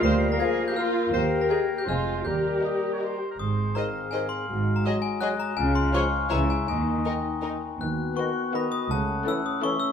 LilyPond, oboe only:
\new Staff \with { instrumentName = "Oboe" } { \time 3/4 \key aes \major \tempo 4 = 164 bes'2~ bes'16 r8. | bes'2 c''4 | bes'4 ees''8. des''16 c''8. bes'16 | c''4 f''2~ |
f''4 ees''2 | f''2 fes''4 | ees''2~ ees''8 r8 | \key b \mixolydian r4 fis''4 dis''4 |
fis''2 e''4 | }